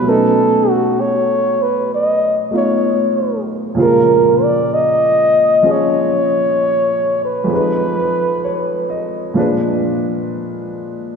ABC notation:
X:1
M:4/4
L:1/16
Q:"Swing" 1/4=64
K:Bbphr
V:1 name="Flugelhorn"
=A2 ^F2 ^c2 =B2 ^d2 c4 z2 | B2 =d2 e4 _d6 c2- | c6 z8 z2 |]
V:2 name="Upright piano"
z16 | z16 | z4 d2 e3 z6 z |]
V:3 name="Upright piano"
[=B,,^F,=A,^C^D]8- [B,,F,A,CD]2 [A,=B,D=F]6 | [B,,D,F,A,F]8 [F,DA]8 | [F,,F,A,Ec]8 [B,,F,A,=Dc]8 |]